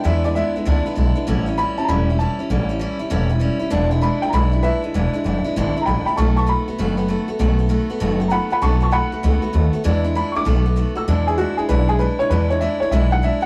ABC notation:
X:1
M:4/4
L:1/8
Q:"Swing" 1/4=196
K:Emix
V:1 name="Upright piano"
e d e4 z2 | z2 b a [^ab]2 =a2- | a4 z4 | z2 b =g [^ab]2 [Be]2- |
[Be]4 z2 [=g^ab] [gb] | [ac'] [ac'] b6 | z6 [f^ab] [fb] | [ac'] [ac'] [fb]6 |
z2 b [c'd']4 e' | z G F G B G B c | B c e c e f e f |]
V:2 name="Steel-string acoustic guitar"
[E,,E,G,B,DE] [G,B,DE] [G,B,DE] [G,B,DE] [E,,E,G,B,DE] [G,B,DE] [G,B,DE] [G,B,DE] | [A,,E,=G,CE] [G,CE] [E,G,CE] [G,CE] [A,,E,G,CE] [G,CE] [E,G,CE] [G,CE] | [A,,E,=G,CE] [G,CE] [E,G,CE] [G,CE] [A,,E,G,CE] [G,CE] [E,G,CE] [G,CE] | [E,,B,,E,G,DE] [E,G,DE] [E,G,DE] [E,G,DE] [E,,B,,E,G,DE] [E,G,DE] [E,G,DE] [E,G,DE] |
[E,,B,,E,G,DE] [E,G,DE] [E,G,DE] [E,G,DE] [E,,B,,E,G,DE] [E,G,DE] [G,DE] [E,G,DE] | [B,,^D,A,B,F] [A,B,F] [D,A,B,F] [A,B,F] [B,,D,A,B,F] [A,B,F] [D,A,B,F] [A,B,F] | [B,,^D,A,B,F] [A,B,F] [D,A,B,F] [A,B,F] [B,,D,A,B,F] [A,B,F] [D,A,B,F] [A,B,F] | [B,,^D,A,B,F] [A,B,F] [D,A,B,F] [A,B,F] [B,,D,A,B,F] [A,B,F] [D,A,B,F] [A,B,F] |
[E,,B,,E,G,DE] [E,G,DE] [E,G,DE] [E,G,DE] [B,,^D,A,B,F] [A,B,F] [D,A,B,F] [A,B,F] | [E,,B,,E,G,DE] [E,G,DE] [E,G,DE] [E,G,DE] [E,,B,,E,G,DE] [E,G,DE] [E,G,DE] [E,G,DE] | [E,,B,,E,G,DE] [E,G,DE] [E,G,DE] [E,G,DE] [E,,B,,E,G,DE] [E,G,DE] [E,G,DE] [G,DE] |]
V:3 name="Upright bass" clef=bass
E,,3 z C,, z B,,, z | A,,,3 z E,,,3 z | A,,,3 z E,,,3 z | E,,,3 z B,,,3 z |
E,,, z F,,, z G,,, z A,,, z | B,,,3 z F,,,3 z | B,,,3 z F,,,3 z | B,,,3 z C,, z ^D,, z |
E,,3 z B,,,3 z | E,,3 z B,,,3 z | E,,3 z B,,,3 z |]